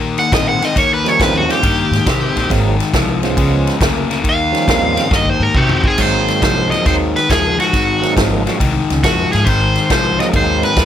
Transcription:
Already playing: A#2 D#3 A#3
0.18 F#5, snare, ride
0.32 A#2 D#3 C4 D#5, kick, snare, ride
0.49 F#5
0.62 D#3 C4 D#5, snare, ride
0.76 D#2 D#3 A#3 C#5, kick, snare, ride
0.94 B4
1.04 F3 G3 A#3 C#4 D#4, snare, ride
1.08 C#5
1.20 D#2 D#3 C4 B4, kick, snare, ride
1.37 F#4
1.48 D#3 F3 G3 A#3 C4 C#4 F4 G4, snare, ride
1.63 G2 D#3 A#3, kick, ride
1.91 G#2, snare, ride
2.06 C3 D#3 C4, kick, snare, ride
2.36 A#1 D#3 C4, snare, ride
2.50 G#1 G#2 D#3 F#3 G#3 A#3 C4 D#4, kick, snare, ride
2.80 snare, ride
2.94 C2 G#2 F3, kick, snare, ride
3.22 G#2 F3 G#3 B3 C#4 F4, snare, ride
3.37 C#2 C#3 G#3, kick, ride
3.67 snare, ride
3.81 D2 C#3 A#3, kick, snare, ride
4.10 C#3 A#3, snare, ride
4.23 D#2 D#3 A#3, kick, ride
4.29 F5
4.52 F3 G3 A#3 C#4 D#4, snare, ride
4.68 D#2 D#3 C4, kick, snare, ride
4.97 D#3 C4, snare, ride
5.10 G2 D#3 A#3, kick, snare
5.16 D#5
5.25 kick
5.30 C5
5.40 G#2 A#4
5.55 C3 D#3 C4 F#4 G4, kick
5.69 floor tom
5.84 D#3 C4 G#4, kick
5.98 G#1 G#2 D#3 F#3 G#3 A#3 C4 D#4 C5, kick, snare, crash
6.28 snare, ride
6.41 C2 G#2 F3 C5, kick, snare, ride
6.70 G#2 F3 D#5, snare, ride
6.85 D#2 G#2 D#3 C5, kick, snare, ride
7.16 B4, snare, ride
7.29 D#2 G#2 F3 G#4, kick, snare, ride
7.58 G#2 F3 F#4, snare, ride
7.72 G#1 G#2 D#3, kick, snare, ride
8.01 F#3 G#3 A#3 C4 D#4, snare, ride
8.16 G#1 G#2 F3, kick, snare, ride
8.46 G#2 F3 F#3 G#3 A#3 C4 F#4, snare, ride
8.60 C2 G#2 D#3, kick, ride
8.90 C#2, snare, ride
9.04 F2 G#2 F3 F#4, kick, snare, ride
9.32 G#2 F3 G#4, snare, ride
9.44 G#1 G#2 D#3 C5, kick, ride
9.75 snare, ride
9.90 C2 G#2 F3 C5, kick, snare, ride
10.19 G#2 F3 F#3 G#3 A#3 C4 D#4 D#5, snare, ride
10.33 D#2 G#2 D#3 C5, kick, ride
10.63 B4, snare, ride
10.77 D#2 G#2 F3, kick, snare, ride

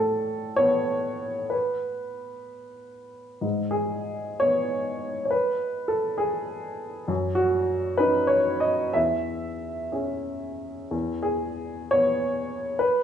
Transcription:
Already playing: A2 A4
0.56 B3 C#5
1.50 B4
3.41 G#2
3.71 G#4
4.40 B3 C#5
5.25 C#5
5.31 B4
5.88 A4
6.18 G#4
7.08 F#2
7.35 F#4
7.97 C#4 D#4 B4
8.27 C#5
8.60 D#5
8.93 E2 E5
9.92 C#4 G#4
10.91 E2
11.23 G#4
11.91 B3 C#5
12.79 B4

